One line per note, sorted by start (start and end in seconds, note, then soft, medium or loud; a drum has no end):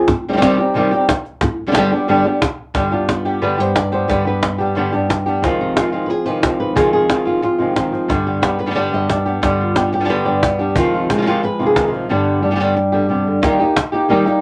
0.08 muted nylon-string guitar stroke medium
0.08 cajon bass medium
0.08 cajon slap soft
0.29 0.32 G3 medium
0.29 0.32 C4 soft
0.29 0.33 D#4 medium
0.33 0.36 D#3 soft
0.33 0.36 G3 soft
0.33 0.37 C4 soft
0.33 0.37 D#4 medium
0.33 0.37 G4 soft
0.37 0.41 D#3 medium
0.37 0.41 G3 medium
0.37 0.41 C4 medium
0.37 0.42 D#4 medium
0.37 0.42 G4 medium
0.42 0.58 C3 medium
0.42 0.58 D#3 medium
0.42 0.58 G3 medium
0.42 0.58 C4 medium
0.42 0.58 D#4 medium
0.42 0.57 G4 medium
0.42 cajon slap medium
0.58 0.75 G3 soft
0.58 0.75 C4 soft
0.58 0.75 D#4 medium
0.58 0.74 G4 soft
0.74 0.91 C3 medium
0.74 0.91 D#3 medium
0.74 0.91 G3 medium
0.74 0.92 C4 medium
0.74 0.92 D#4 medium
0.74 0.90 G4 medium
0.91 1.08 G3 soft
0.91 1.08 C4 soft
0.91 1.09 D#4 soft
0.91 1.07 G4 soft
0.91 cajon slap soft
1.09 muted nylon-string guitar stroke medium
1.09 cajon bass medium
1.09 cajon slap medium
1.25 cajon slap soft
1.41 muted nylon-string guitar stroke medium
1.41 cajon bass medium
1.41 cajon slap soft
1.67 1.70 D3 soft
1.67 1.71 G3 soft
1.67 1.71 B3 soft
1.67 1.71 D4 soft
1.67 1.71 G4 soft
1.71 1.75 D3 medium
1.71 1.75 G3 medium
1.71 1.76 B3 medium
1.71 1.76 D4 medium
1.71 1.76 G4 medium
1.71 cajon slap loud
1.76 1.92 G2 medium
1.76 1.92 D3 medium
1.76 1.92 G3 medium
1.76 1.92 B3 medium
1.76 1.92 D4 medium
1.76 1.91 G4 medium
1.92 2.08 G3 soft
1.92 2.08 B3 soft
1.92 2.08 D4 soft
1.92 2.08 G4 soft
2.08 2.24 G2 medium
2.08 2.25 D3 medium
2.08 2.25 G3 medium
2.08 2.25 B3 medium
2.08 2.24 D4 medium
2.08 2.23 G4 medium
2.25 2.41 G3 soft
2.25 2.41 B3 soft
2.25 2.41 D4 soft
2.25 2.41 G4 soft
2.41 muted nylon-string guitar stroke medium
2.41 cajon bass medium
2.41 cajon slap loud
2.74 2.91 G2 soft
2.74 2.91 D3 medium
2.74 2.91 G3 medium
2.74 2.92 B3 medium
2.74 2.91 D4 medium
2.74 2.90 G4 medium
2.74 cajon bass medium
2.74 cajon slap soft
2.92 3.08 G3 soft
2.92 3.08 B3 soft
2.92 3.08 D4 soft
2.92 3.43 F4 medium
2.92 3.08 G4 soft
3.08 4.07 B3 medium
3.08 3.24 G4 medium
3.08 muted nylon-string guitar stroke medium
3.08 cajon slap medium
3.25 3.41 G3 soft
3.25 3.41 B3 soft
3.25 3.42 D4 soft
3.25 3.41 G4 soft
3.42 3.58 G2 medium
3.42 3.58 D3 medium
3.42 3.58 G3 medium
3.42 3.59 B3 medium
3.42 3.58 D4 medium
3.42 3.57 G4 medium
3.42 3.92 B4 medium
3.58 4.07 G2 medium
3.58 3.75 G3 soft
3.58 3.75 B3 soft
3.58 3.75 D4 soft
3.58 3.75 G4 soft
3.58 3.76 C5 medium
3.76 3.92 D5 medium
3.76 muted nylon-string guitar stroke medium
3.76 cajon slap medium
3.92 4.08 G3 soft
3.92 4.08 B3 soft
3.92 4.09 D4 soft
3.92 4.08 G4 soft
3.92 4.09 C5 medium
3.92 cajon slap soft
4.08 4.25 G2 medium
4.08 4.25 D3 medium
4.08 4.25 G3 medium
4.08 4.25 B3 medium
4.08 4.25 D4 medium
4.08 4.24 G4 medium
4.08 4.26 B4 loud
4.08 cajon bass medium
4.08 cajon slap soft
4.25 4.41 G3 soft
4.25 4.41 B3 soft
4.25 4.42 D4 soft
4.25 4.42 G4 soft
4.25 4.93 B4 medium
4.42 5.41 B3 medium
4.42 muted nylon-string guitar stroke soft
4.42 cajon slap medium
4.58 4.75 G3 soft
4.58 4.76 B3 soft
4.58 4.75 D4 soft
4.58 4.75 G4 soft
4.75 4.92 G2 medium
4.75 4.92 D3 medium
4.75 4.92 G3 medium
4.75 4.93 B3 medium
4.75 4.92 D4 medium
4.75 4.91 G4 medium
4.92 5.43 G2 medium
4.92 5.09 G3 soft
4.92 5.08 B3 soft
4.92 5.09 D4 soft
4.92 5.09 G4 soft
4.92 cajon slap soft
5.09 5.43 D4 soft
5.09 muted nylon-string guitar stroke soft
5.09 cajon slap medium
5.26 5.43 G3 soft
5.26 5.43 B3 soft
5.26 5.43 D4 soft
5.26 5.42 G4 soft
5.26 cajon slap soft
5.42 5.76 F2 medium
5.42 5.76 C3 medium
5.42 5.75 D#3 medium
5.42 6.74 F3 medium
5.42 5.76 G#3 medium
5.42 5.76 C4 medium
5.42 5.77 F4 medium
5.42 cajon bass medium
5.42 cajon slap soft
5.61 5.77 D#4 medium
5.76 5.92 D#3 soft
5.76 5.93 G#3 soft
5.76 5.92 C4 soft
5.76 5.91 F4 soft
5.76 cajon slap medium
5.92 6.09 D#3 soft
5.92 6.09 G#3 soft
5.92 6.09 C4 soft
5.92 6.09 F4 soft
6.06 6.10 B4 medium
6.06 muted nylon-string guitar stroke soft
6.10 6.26 G#4 loud
6.25 6.76 C3 medium
6.25 6.43 D#3 soft
6.25 6.43 G#3 soft
6.25 6.42 C4 soft
6.25 6.41 F4 soft
6.25 6.43 B4 medium
6.42 6.75 D#3 soft
6.42 6.76 G#3 soft
6.42 6.76 C4 soft
6.42 6.75 F4 soft
6.42 6.59 C5 medium
6.42 cajon bass medium
6.42 cajon slap medium
6.60 6.76 B4 medium
6.75 7.09 F2 medium
6.75 7.09 C3 medium
6.75 7.07 D#3 medium
6.75 7.91 F3 medium
6.75 7.08 G#3 medium
6.75 7.09 C4 medium
6.75 7.09 F4 medium
6.75 6.92 G#4 medium
6.75 cajon bass medium
6.93 7.60 G#4 medium
7.08 7.25 D#3 soft
7.08 7.25 G#3 soft
7.08 7.25 C4 soft
7.08 7.24 F4 soft
7.08 cajon slap medium
7.25 7.42 D#3 soft
7.25 7.42 G#3 soft
7.25 7.42 C4 soft
7.25 7.42 F4 soft
7.42 8.10 F4 medium
7.42 muted nylon-string guitar stroke soft
7.58 7.75 C3 medium
7.58 7.76 D#3 soft
7.58 7.76 G#3 soft
7.58 7.75 C4 soft
7.58 7.74 F4 soft
7.76 8.09 D#3 soft
7.76 8.09 G#3 soft
7.76 8.09 C4 soft
7.76 8.09 F4 soft
7.76 cajon slap medium
7.92 8.09 F3 medium
7.92 cajon slap soft
8.08 8.42 G2 medium
8.08 8.42 D3 medium
8.08 8.42 G3 medium
8.08 8.43 B3 medium
8.08 8.43 D4 medium
8.08 8.42 G4 medium
8.08 cajon bass medium
8.08 cajon slap soft
8.27 8.42 G4 medium
8.42 8.58 G3 soft
8.42 8.58 B3 soft
8.42 8.58 D4 soft
8.42 8.58 G4 soft
8.42 8.59 B4 medium
8.42 cajon slap medium
8.59 8.75 B4 medium
8.59 muted nylon-string guitar stroke soft
8.66 8.69 D3 soft
8.66 8.70 G3 soft
8.66 8.70 B3 soft
8.66 8.70 D4 soft
8.66 8.71 G4 soft
8.70 8.74 D3 soft
8.70 8.74 G3 soft
8.70 8.74 B3 medium
8.70 8.75 D4 medium
8.70 8.75 G4 medium
8.75 9.08 G2 medium
8.75 9.08 D3 medium
8.75 9.07 G3 medium
8.75 9.08 B3 medium
8.75 9.09 D4 medium
8.75 9.09 G4 medium
8.75 8.93 D5 medium
8.92 9.41 G2 medium
8.92 9.10 D#5 medium
8.92 cajon slap soft
9.08 9.25 G3 soft
9.08 9.26 B3 soft
9.08 9.25 D4 soft
9.08 9.24 G4 soft
9.08 cajon slap medium
9.26 9.42 G3 soft
9.26 9.42 B3 soft
9.26 9.42 D4 soft
9.26 9.42 G4 soft
9.26 cajon slap soft
9.42 9.75 G2 medium
9.42 9.75 D3 medium
9.42 9.76 G3 medium
9.42 9.76 B3 medium
9.42 9.75 D4 medium
9.42 9.74 G4 medium
9.42 cajon bass medium
9.42 cajon slap soft
9.60 10.10 F4 medium
9.75 9.92 G3 soft
9.75 9.92 B3 soft
9.75 9.92 D4 soft
9.75 9.92 G4 soft
9.75 cajon slap medium
9.92 10.25 G4 medium
9.92 muted nylon-string guitar stroke soft
10.00 10.03 D3 soft
10.00 10.04 G3 soft
10.00 10.04 B3 soft
10.00 10.04 D4 soft
10.00 10.04 G4 soft
10.04 10.08 D3 soft
10.04 10.08 G3 soft
10.04 10.09 B3 medium
10.04 10.08 D4 medium
10.04 10.09 G4 medium
10.09 10.42 G2 medium
10.09 10.42 D3 medium
10.09 10.41 G3 medium
10.09 10.42 B3 medium
10.09 10.42 D4 medium
10.09 10.42 G4 medium
10.09 10.60 B4 medium
10.26 10.76 G2 medium
10.26 10.76 D5 medium
10.43 10.59 G3 soft
10.43 10.59 B3 soft
10.43 10.59 D4 soft
10.43 10.58 G4 soft
10.43 cajon bass medium
10.43 cajon slap medium
10.59 10.76 G3 soft
10.59 10.76 B3 soft
10.59 10.76 D4 soft
10.59 10.75 G4 soft
10.76 11.09 F2 medium
10.76 11.09 C3 medium
10.76 11.09 D#3 medium
10.76 11.75 F3 medium
10.76 11.10 G#3 medium
10.76 11.09 C4 medium
10.76 11.09 F4 medium
10.76 cajon bass medium
10.94 11.44 F4 medium
11.10 11.16 D#3 soft
11.10 11.17 G#3 soft
11.10 11.17 C4 soft
11.10 11.17 F4 soft
11.10 11.27 G4 medium
11.10 cajon slap medium
11.17 11.21 C3 soft
11.17 11.21 D#3 soft
11.17 11.21 G#3 soft
11.17 11.21 C4 soft
11.17 11.21 F4 soft
11.22 11.25 C3 soft
11.22 11.25 D#3 soft
11.22 11.26 G#3 medium
11.22 11.26 C4 medium
11.22 11.26 F4 medium
11.26 11.42 F2 medium
11.26 11.42 C3 medium
11.26 11.42 D#3 medium
11.26 11.42 G#3 medium
11.26 11.42 C4 medium
11.26 11.43 F4 medium
11.26 11.44 G4 medium
11.43 11.94 B4 medium
11.43 muted nylon-string guitar stroke medium
11.59 12.07 C3 medium
11.59 11.75 D#3 soft
11.59 11.76 G#3 soft
11.59 11.76 C4 soft
11.59 12.08 D#4 soft
11.59 11.76 F4 soft
11.66 11.88 G#4 medium
11.76 12.09 D#3 soft
11.76 12.09 G#3 soft
11.76 12.10 C4 soft
11.76 12.10 F4 soft
11.76 cajon bass medium
11.76 cajon slap medium
11.88 12.10 F4 medium
11.93 12.10 F3 medium
11.93 cajon slap soft
12.09 12.42 G2 medium
12.09 12.42 D3 medium
12.09 12.43 G3 medium
12.09 12.43 B3 medium
12.09 12.42 D4 medium
12.09 12.41 G4 medium
12.42 12.50 G3 soft
12.42 12.50 B3 soft
12.42 12.50 D4 soft
12.42 12.51 G4 soft
12.51 12.54 D3 soft
12.51 12.55 G3 soft
12.51 12.55 B3 soft
12.51 12.55 D4 soft
12.51 12.55 G4 soft
12.56 12.59 D3 soft
12.56 12.59 G3 medium
12.56 12.59 B3 medium
12.56 12.60 D4 medium
12.56 12.60 G4 medium
12.60 12.75 G2 medium
12.60 12.75 D3 medium
12.60 12.76 G3 medium
12.60 12.76 B3 medium
12.60 12.76 D4 medium
12.60 12.76 G4 medium
12.76 muted nylon-string guitar stroke medium
12.92 13.09 D3 medium
12.92 13.08 G3 soft
12.92 13.08 B3 soft
12.92 13.09 D4 soft
12.92 13.09 G4 soft
13.09 13.26 C3 medium
13.09 13.42 G3 soft
13.09 13.42 B3 soft
13.09 13.43 D4 soft
13.09 13.43 G4 soft
13.27 13.43 D3 medium
13.42 13.58 D#3 medium
13.42 13.60 G3 medium
13.42 13.59 A#3 medium
13.42 13.59 D#4 medium
13.42 13.58 G4 medium
13.42 cajon bass medium
13.42 cajon slap soft
13.59 13.75 A#3 soft
13.59 13.76 D#4 soft
13.59 13.76 G4 soft
13.76 muted nylon-string guitar stroke medium
13.76 cajon slap loud
13.92 14.08 A#3 soft
13.92 14.09 D#4 soft
13.92 14.09 G4 soft
14.09 14.25 D#3 medium
14.09 14.26 G3 medium
14.09 14.26 A#3 medium
14.09 14.26 D#4 medium
14.09 14.24 G4 medium
14.26 14.41 A#3 soft
14.26 14.41 D#4 soft
14.26 14.41 G4 soft
14.26 cajon slap soft